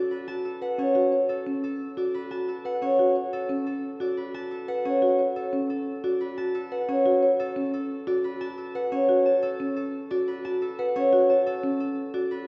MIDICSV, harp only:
0, 0, Header, 1, 2, 480
1, 0, Start_track
1, 0, Tempo, 338983
1, 1113, Time_signature, 6, 2, 24, 8
1, 17658, End_track
2, 0, Start_track
2, 0, Title_t, "Harp"
2, 0, Program_c, 0, 46
2, 0, Note_on_c, 0, 69, 56
2, 0, Note_on_c, 0, 73, 68
2, 0, Note_on_c, 0, 74, 51
2, 0, Note_on_c, 0, 78, 54
2, 0, Note_on_c, 0, 81, 63
2, 155, Note_on_c, 0, 71, 52
2, 375, Note_off_c, 0, 81, 0
2, 392, Note_on_c, 0, 81, 63
2, 617, Note_off_c, 0, 69, 0
2, 634, Note_on_c, 0, 69, 46
2, 859, Note_off_c, 0, 78, 0
2, 876, Note_on_c, 0, 78, 54
2, 1097, Note_off_c, 0, 73, 0
2, 1114, Note_on_c, 0, 73, 65
2, 1809, Note_off_c, 0, 69, 0
2, 1826, Note_on_c, 0, 69, 61
2, 2301, Note_off_c, 0, 69, 0
2, 2318, Note_on_c, 0, 69, 53
2, 2781, Note_off_c, 0, 74, 0
2, 2798, Note_on_c, 0, 74, 52
2, 3018, Note_off_c, 0, 71, 0
2, 3035, Note_on_c, 0, 71, 57
2, 3255, Note_off_c, 0, 81, 0
2, 3272, Note_on_c, 0, 81, 64
2, 3498, Note_off_c, 0, 69, 0
2, 3515, Note_on_c, 0, 69, 46
2, 3739, Note_off_c, 0, 78, 0
2, 3756, Note_on_c, 0, 78, 57
2, 3976, Note_off_c, 0, 73, 0
2, 3993, Note_on_c, 0, 73, 69
2, 4697, Note_off_c, 0, 69, 0
2, 4714, Note_on_c, 0, 69, 66
2, 5174, Note_off_c, 0, 69, 0
2, 5191, Note_on_c, 0, 69, 53
2, 5657, Note_off_c, 0, 74, 0
2, 5674, Note_on_c, 0, 74, 50
2, 5891, Note_off_c, 0, 71, 0
2, 5908, Note_on_c, 0, 71, 52
2, 6135, Note_off_c, 0, 81, 0
2, 6152, Note_on_c, 0, 81, 66
2, 6370, Note_off_c, 0, 69, 0
2, 6387, Note_on_c, 0, 69, 47
2, 6612, Note_off_c, 0, 78, 0
2, 6629, Note_on_c, 0, 78, 53
2, 6854, Note_off_c, 0, 73, 0
2, 6871, Note_on_c, 0, 73, 66
2, 7572, Note_off_c, 0, 69, 0
2, 7589, Note_on_c, 0, 69, 65
2, 8050, Note_off_c, 0, 69, 0
2, 8067, Note_on_c, 0, 69, 55
2, 8531, Note_off_c, 0, 74, 0
2, 8548, Note_on_c, 0, 74, 50
2, 8771, Note_off_c, 0, 71, 0
2, 8788, Note_on_c, 0, 71, 55
2, 9010, Note_off_c, 0, 81, 0
2, 9027, Note_on_c, 0, 81, 67
2, 9251, Note_off_c, 0, 69, 0
2, 9268, Note_on_c, 0, 69, 50
2, 9493, Note_off_c, 0, 78, 0
2, 9510, Note_on_c, 0, 78, 52
2, 9732, Note_off_c, 0, 73, 0
2, 9749, Note_on_c, 0, 73, 68
2, 10455, Note_off_c, 0, 69, 0
2, 10472, Note_on_c, 0, 69, 67
2, 10936, Note_off_c, 0, 69, 0
2, 10953, Note_on_c, 0, 69, 54
2, 11411, Note_off_c, 0, 74, 0
2, 11428, Note_on_c, 0, 74, 50
2, 11655, Note_off_c, 0, 71, 0
2, 11672, Note_on_c, 0, 71, 58
2, 11886, Note_off_c, 0, 81, 0
2, 11903, Note_on_c, 0, 81, 65
2, 12128, Note_off_c, 0, 69, 0
2, 12145, Note_on_c, 0, 69, 50
2, 12374, Note_off_c, 0, 78, 0
2, 12391, Note_on_c, 0, 78, 50
2, 12611, Note_off_c, 0, 73, 0
2, 12628, Note_on_c, 0, 73, 70
2, 13090, Note_off_c, 0, 81, 0
2, 13107, Note_on_c, 0, 81, 55
2, 13330, Note_off_c, 0, 69, 0
2, 13347, Note_on_c, 0, 69, 70
2, 13808, Note_off_c, 0, 69, 0
2, 13825, Note_on_c, 0, 69, 54
2, 14291, Note_off_c, 0, 74, 0
2, 14308, Note_on_c, 0, 74, 53
2, 14535, Note_off_c, 0, 71, 0
2, 14552, Note_on_c, 0, 71, 54
2, 14776, Note_off_c, 0, 81, 0
2, 14793, Note_on_c, 0, 81, 68
2, 15017, Note_off_c, 0, 69, 0
2, 15034, Note_on_c, 0, 69, 52
2, 15256, Note_off_c, 0, 78, 0
2, 15273, Note_on_c, 0, 78, 52
2, 15499, Note_off_c, 0, 73, 0
2, 15516, Note_on_c, 0, 73, 77
2, 15978, Note_off_c, 0, 81, 0
2, 15995, Note_on_c, 0, 81, 56
2, 16217, Note_off_c, 0, 69, 0
2, 16234, Note_on_c, 0, 69, 70
2, 16695, Note_off_c, 0, 69, 0
2, 16711, Note_on_c, 0, 69, 52
2, 17170, Note_off_c, 0, 74, 0
2, 17187, Note_on_c, 0, 74, 54
2, 17414, Note_off_c, 0, 71, 0
2, 17431, Note_on_c, 0, 71, 57
2, 17653, Note_off_c, 0, 81, 0
2, 17658, Note_off_c, 0, 69, 0
2, 17658, Note_off_c, 0, 71, 0
2, 17658, Note_off_c, 0, 73, 0
2, 17658, Note_off_c, 0, 74, 0
2, 17658, Note_off_c, 0, 78, 0
2, 17658, End_track
0, 0, End_of_file